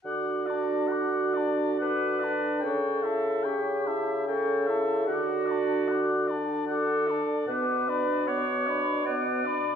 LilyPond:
<<
  \new Staff \with { instrumentName = "Flute" } { \time 3/4 \key d \major \tempo 4 = 74 d'''8 a''8 d'''8 a''8 d'''8 a''8 | cis'''8 a''8 cis'''8 a''8 cis'''8 a''8 | d'''8 a''8 d'''8 a''8 d'''8 a''8 | d'''8 b''8 d'''8 b''8 d'''8 b''8 | }
  \new Staff \with { instrumentName = "Oboe" } { \time 3/4 \key d \major fis''8 d''8 fis''8 d''8 fis''8 d''8 | g''8 e''8 g''8 e''8 g''8 e''8 | fis''8 d''8 fis''8 d''8 fis''8 d''8 | fis''8 d''8 fis''8 d''8 fis''8 d''8 | }
  \new Staff \with { instrumentName = "Clarinet" } { \time 3/4 \key d \major fis'2 b'4 | a'4 g'4 a'4 | fis'4. r8 a'4 | b'4 cis''4 d''4 | }
  \new Staff \with { instrumentName = "French horn" } { \time 3/4 \key d \major fis'8 d'8 fis'8 d'8 fis'8 d'8 | cis'8 e'8 cis'8 e'8 cis'8 e'8 | fis'8 d'8 fis'8 d'8 fis'8 d'8 | b8 d'8 b8 d'8 b8 d'8 | }
  \new Staff \with { instrumentName = "Bassoon" } { \clef bass \time 3/4 \key d \major d2. | cis2. | d2~ d8 r8 | b,2. | }
>>